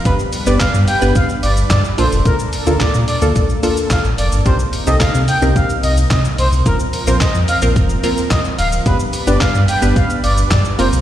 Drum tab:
HH |x-o-x-o-x-o-x-o-|x-o-x-o-x-o-x-o-|x-o-x-o-x-o-x-o-|x-o-x-o-x-o-x-o-|
SH |xxxxxxxxxxxxxxxx|xxxxxxxxxxxxxxxx|xxxxxxxxxxxxxxxx|xxxxxxxxxxxxxxxx|
CP |----x-------x---|----x-------x---|----x-------x---|----x-------x---|
SD |----o-------o---|----o-------o---|----o-------o---|----o-------o---|
BD |o---o---o---o---|o---o---o---o---|o---o---o---o---|o---o---o---o---|

HH |x-o-x-o-x-o-x-o-|
SH |xxxxxxxxxxxxxxxx|
CP |----x-------x---|
SD |----o-------o---|
BD |o---o---o---o---|